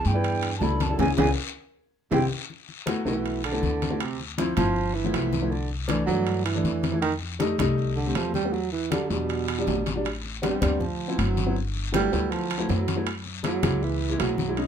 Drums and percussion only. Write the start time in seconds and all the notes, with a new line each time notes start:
0.05 high conga, short guiro
0.24 high conga, high timbale, long guiro
0.43 high conga, high timbale
0.61 high conga, low timbale, short guiro
0.80 high conga, high timbale, short guiro
0.99 high conga, high timbale, long guiro
1.18 high conga, high timbale, long guiro
2.12 high conga, high timbale, long guiro
2.50 high conga, long guiro
2.69 high conga
2.87 high conga, high timbale, short guiro
3.06 high conga, short guiro
3.25 high conga, high timbale, long guiro
3.44 high conga, high timbale
3.63 high conga, short guiro
3.82 high conga, high timbale, short guiro
4.00 high conga, high timbale, long guiro
4.20 high conga
4.38 high conga, high timbale, short guiro
4.57 high conga, low conga, high timbale, short guiro
4.76 high conga, long guiro
4.94 high conga
5.14 high conga, high timbale, low timbale, short guiro
5.33 high conga, short guiro
5.52 high conga, long guiro
5.70 high conga
5.89 high conga, high timbale, short guiro
6.08 high conga, short guiro
6.27 high conga, high timbale, long guiro
6.46 high conga, high timbale
6.65 high conga, short guiro
6.83 high conga, high timbale, short guiro
7.02 high conga, high timbale, long guiro
7.21 high conga
7.40 high conga, high timbale, short guiro
7.59 high conga, low conga, high timbale, short guiro
7.78 high conga, long guiro
7.97 high conga
8.15 high conga, high timbale, low timbale, short guiro
8.34 high conga, short guiro
8.53 high conga, long guiro
8.72 high conga
8.92 high conga, high timbale, short guiro
9.10 high conga, short guiro
9.29 high conga, high timbale, long guiro
9.48 high conga, high timbale
9.67 high conga, low timbale, short guiro
9.86 high conga, high timbale, short guiro
10.05 high conga, high timbale, long guiro
10.24 high conga
10.43 high conga, high timbale, short guiro
10.62 high conga, low conga, high timbale, short guiro
10.80 high conga, low conga, long guiro
11.00 high conga
11.19 high conga, high timbale, short guiro
11.37 high conga, short guiro
11.56 high conga, long guiro
11.76 high conga
11.94 high conga, high timbale, short guiro
12.13 high conga, short guiro
12.32 high conga, high timbale, long guiro
12.50 high conga, high timbale
12.69 high conga, low timbale, short guiro
12.88 high conga, high timbale, short guiro
13.07 high conga, high timbale, long guiro
13.26 high conga
13.44 high conga, high timbale, short guiro
13.63 high conga, low conga, high timbale, short guiro
13.83 high conga, long guiro
14.01 high conga
14.19 high conga, high timbale, low timbale, short guiro
14.38 high conga, short guiro
14.57 high conga, high timbale, long guiro